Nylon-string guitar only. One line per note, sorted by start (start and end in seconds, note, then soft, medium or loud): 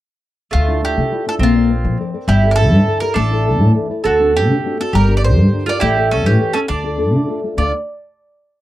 0.52 0.81 D3 medium
0.68 0.81 D4 soft
0.68 0.82 E4 soft
0.68 0.82 F4 soft
0.82 1.06 D4 soft
0.82 1.06 E4 soft
0.82 1.06 F4 medium
0.97 1.26 A3 soft
1.11 1.25 D4 soft
1.11 1.26 E4 soft
1.11 1.26 F4 medium
1.26 1.38 D4 soft
1.26 1.38 E4 soft
1.26 1.38 F4 medium
1.42 1.70 A#3 medium
1.55 1.68 A#4 soft
1.55 1.69 C5 soft
1.55 1.69 D5 soft
1.69 1.93 A#4 soft
1.69 1.93 C5 soft
1.69 1.94 D5 soft
1.84 2.13 F3 medium
2.00 2.13 A#4 soft
2.00 2.13 C5 soft
2.00 2.13 D5 soft
2.14 2.25 A#4 medium
2.14 2.25 C5 soft
2.14 2.26 D5 medium
2.28 2.57 G3 medium
2.44 2.57 G4 soft
2.44 2.57 A4 soft
2.44 2.58 D5 soft
2.58 2.82 G4 soft
2.58 2.82 A4 soft
2.58 2.82 D5 medium
2.73 3.01 D3 medium
2.87 3.01 G4 soft
2.87 3.01 A4 soft
2.87 3.02 D5 medium
3.02 3.13 G4 soft
3.02 3.13 A4 soft
3.02 3.14 D5 medium
3.16 3.45 A3 medium
3.31 3.44 E4 soft
3.31 3.45 A4 soft
3.31 3.45 D5 soft
3.45 3.69 E4 soft
3.45 3.69 A4 soft
3.45 3.70 D5 soft
3.59 3.89 E3 soft
3.74 3.88 E4 soft
3.74 3.89 A4 soft
3.74 3.89 D5 soft
3.89 4.01 E4 soft
3.89 4.02 A4 soft
3.89 4.02 D5 soft
4.04 4.33 D3 medium
4.19 4.34 C4 soft
4.19 4.35 D4 soft
4.19 4.35 F#4 soft
4.36 4.59 C4 soft
4.36 4.59 D4 soft
4.36 4.59 F#4 soft
4.50 4.78 A3 medium
4.65 4.79 C4 soft
4.65 4.79 D4 soft
4.65 4.80 F#4 soft
4.80 4.91 C4 soft
4.80 4.91 D4 soft
4.80 4.92 F#4 medium
4.94 5.22 G3 medium
5.08 5.22 D4 soft
5.08 5.23 G4 soft
5.08 5.23 A#4 soft
5.24 5.47 D4 soft
5.24 5.47 G4 soft
5.24 5.47 A#4 soft
5.37 5.66 D3 soft
5.53 5.66 D4 soft
5.53 5.66 G4 soft
5.53 5.66 A#4 soft
5.67 5.79 D4 soft
5.67 5.79 G4 soft
5.67 5.79 A#4 medium
5.82 6.10 A3 medium
5.97 6.10 G4 soft
5.97 6.10 A4 soft
5.97 6.11 C#5 soft
6.12 6.35 G4 soft
6.12 6.35 A4 soft
6.12 6.35 C#5 soft
6.25 6.53 E3 medium
6.39 6.53 G4 soft
6.39 6.53 A4 soft
6.39 6.53 C#5 medium
6.54 6.65 G4 soft
6.54 6.66 A4 soft
6.54 6.66 C#5 medium
6.69 6.97 D3 medium
6.83 6.96 D4 soft
6.83 6.97 F4 soft
6.83 6.97 A4 soft
6.98 7.22 D4 soft
6.98 7.22 F4 soft
6.98 7.22 A4 soft
7.12 7.41 A3 soft
7.28 7.42 D4 soft
7.28 7.43 F4 soft
7.28 7.42 A4 soft
7.43 7.55 D4 soft
7.43 7.55 F4 soft
7.43 7.55 A4 soft
7.57 7.71 D3 soft
7.57 7.71 A3 soft
7.57 7.72 D4 medium
7.57 7.72 F4 soft
7.57 7.72 A4 medium